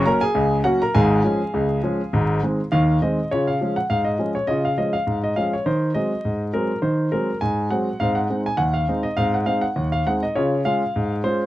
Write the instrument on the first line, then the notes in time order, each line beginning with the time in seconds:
grand piano
0.06 F#3 A#3 C#4 A#4 A#5
0.21 G#4 G#5
0.35 C#2 C#3
0.64 F#3 A#3 C#4 F#4 F#5
0.82 A#4 A#5
0.95 G#1 G#2 G#4 F5 G#5
1.24 F3 G#3 C#4
1.54 C#2 C#3
1.83 F3 G#3 C#4
2.13 G#1 G#2
2.43 D#3 G#3 C4
2.72 D#2 D#3 F5
3.02 D#3 G#3 C4 D#5
3.31 C#3 F4 C#5
3.47 F5
3.61 F3 G#3 C#4
3.76 F#5
3.90 G#2 F5
4.04 D#5
4.19 F3 G#3 C#4
4.35 C#5
4.47 C#3 F4 D#5
4.65 F5
4.78 F3 G#3 C#4 D#5
4.93 F5
5.07 G#2
5.24 D#5
5.36 F3 G#3 C#4 F5
5.53 C#5
5.66 D#3 C5
5.94 F#3 G#3 C4 D#5
6.25 G#2
6.54 F#3 G#3 C4 A#4
6.82 D#3 C5
7.12 F#3 G#3 C4 A#4
7.41 G#2 G#5
7.70 F#3 G#3 C4 F#5
8.00 G#2 C4 F5
8.15 F#5
8.30 G#3 C4 D#4
8.46 G#5
8.57 D#2 F#5
8.74 F5
8.88 G#3 C4 D#4
9.03 D#5
9.17 G#2 C4 F5
9.34 F#5
9.46 G#3 C4 D#4 F5
9.61 F#5
9.76 D#2
9.92 F5
10.07 G#3 C4 D#4 F#5
10.23 D#5
10.35 C#3 F4 C#5
10.65 G#3 C#4 F4 F5
10.96 G#2
11.24 G#3 C#4 F4 C5